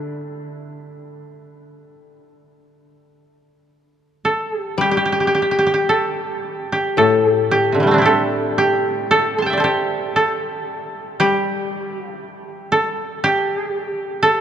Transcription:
0.00 1.44 D3 soft
0.00 3.62 D4 medium
0.00 0.41 E4 medium
4.25 4.58 A4 soft
4.58 4.81 G4 soft
4.78 8.05 G3 soft
4.78 4.91 G4 medium
4.91 4.97 G4 soft
4.97 5.05 G4 soft
5.05 5.12 G4 soft
5.12 5.20 G4 soft
5.20 5.27 G4 soft
5.27 5.34 G4 soft
5.35 5.42 G4 soft
5.42 5.51 G4 soft
5.51 5.58 G4 soft
5.59 5.66 G4 soft
5.67 5.73 G4 soft
5.74 6.72 G4 soft
5.89 6.97 A4 medium
6.72 7.31 G4 medium
6.97 10.15 A2 soft
6.97 7.31 A4 medium
7.31 7.51 G4 medium
7.51 8.01 G4 medium
7.72 8.00 C3 soft
7.72 7.97 D3 soft
7.80 8.00 E3 soft
7.80 8.12 G3 soft
7.87 10.76 A3 soft
7.91 10.51 C4 soft
7.91 10.36 D4 soft
7.98 10.24 E4 soft
7.98 8.58 G4 soft
8.06 9.10 A4 medium
8.58 9.43 G4 medium
9.11 9.43 A4 medium
9.38 10.68 A5 soft
9.38 10.52 C6 soft
9.43 9.60 G4 medium
9.43 10.81 G5 soft
9.50 11.13 D5 soft
9.50 10.99 E5 soft
9.57 10.16 A4 soft
9.57 11.29 C5 soft
9.64 11.19 G4 medium
10.16 12.06 A4 medium
11.20 14.23 G3 soft
11.20 11.93 G4 medium
11.93 12.06 F#4 medium
12.06 12.18 F4 medium
12.18 13.23 E4 medium
12.72 14.22 A4 medium
13.24 14.41 G4 medium
14.23 14.41 A4 medium

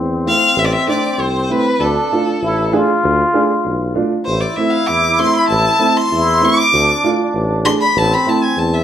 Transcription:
0.00 0.32 E2 medium
0.00 1.77 C4 medium
0.25 0.41 A3 medium
0.25 0.42 C4 medium
0.25 0.42 E4 medium
0.25 0.60 F5 loud
0.56 0.75 A1 loud
0.56 0.66 E5 loud
0.65 0.74 D5 medium
0.72 0.88 E5 loud
0.87 1.03 A3 medium
0.87 1.03 C4 medium
0.87 1.03 D4 medium
0.87 1.23 D5 medium
1.18 1.55 C2 medium
1.18 1.52 C5 medium
1.49 1.65 A3 medium
1.49 1.65 C4 medium
1.49 1.65 E4 medium
1.49 1.81 B4 loud
1.79 1.98 D2 loud
1.79 2.37 D4 medium
1.79 2.73 A4 medium
2.11 2.27 A3 medium
2.11 2.27 D4 medium
2.11 2.27 F4 medium
2.42 2.79 A1 medium
2.42 2.74 E4 loud
2.72 2.88 A3 medium
2.72 2.88 D4 medium
2.72 3.96 F4 loud
2.72 2.88 G#4 loud
3.04 3.22 D2 loud
3.33 3.49 A3 medium
3.33 3.49 D4 medium
3.33 3.50 G#4 medium
3.65 4.02 B1 medium
3.95 4.11 A3 medium
3.95 4.11 D4 medium
3.95 4.11 F4 medium
4.25 4.46 A1 loud
4.25 6.07 E4 loud
4.25 4.42 C5 medium
4.41 4.57 D5 medium
4.56 4.72 A3 medium
4.56 4.73 C4 medium
4.56 4.73 E4 medium
4.56 4.72 E5 medium
4.70 4.88 F5 medium
4.87 5.25 E2 medium
4.87 5.21 D6 loud
5.19 5.34 A3 medium
5.19 5.35 C4 medium
5.19 5.34 E4 medium
5.19 5.35 C6 loud
5.33 5.48 B5 medium
5.48 5.68 A1 loud
5.48 5.98 A5 loud
5.79 5.95 A3 medium
5.79 5.95 C4 medium
5.79 5.95 E4 medium
5.97 6.46 C6 loud
6.12 6.49 E2 medium
6.12 6.75 E4 loud
6.40 6.56 A3 medium
6.40 6.57 C4 medium
6.40 6.57 E4 medium
6.45 7.05 D6 loud
6.73 6.91 D2 loud
6.73 7.94 D4 medium
7.03 7.19 A3 medium
7.03 7.19 D4 medium
7.03 7.19 F4 medium
7.34 7.71 A1 medium
7.65 7.80 A3 medium
7.65 7.80 D4 medium
7.65 7.81 G#4 medium
7.65 7.72 C6 loud
7.81 7.99 B5 loud
7.95 8.14 A1 loud
7.95 8.83 C4 medium
7.95 8.15 A5 loud
8.14 8.30 B5 loud
8.26 8.41 A3 medium
8.26 8.42 C4 medium
8.26 8.42 E4 medium
8.26 8.45 A5 medium
8.43 8.60 G#5 medium
8.57 8.84 E2 medium
8.57 8.75 A5 medium
8.74 8.84 E5 medium

